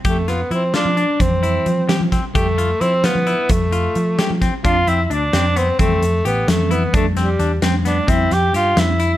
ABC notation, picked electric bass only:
X:1
M:5/8
L:1/16
Q:1/4=131
K:Flyd
V:1 name="Picked electric bass" clef=bass
F,,4 F,3 F,2 z | F,,4 F,3 F,2 z | F,,4 F,3 F,2 z | F,,4 F,3 F,2 z |
F,,2 F,,2 D,,2 F,,4 | F,,2 F,,2 A,,,2 F,,4 | F,,2 F,,2 E,,2 F,,4 | F,,2 F,,2 G,,2 F,,4 |]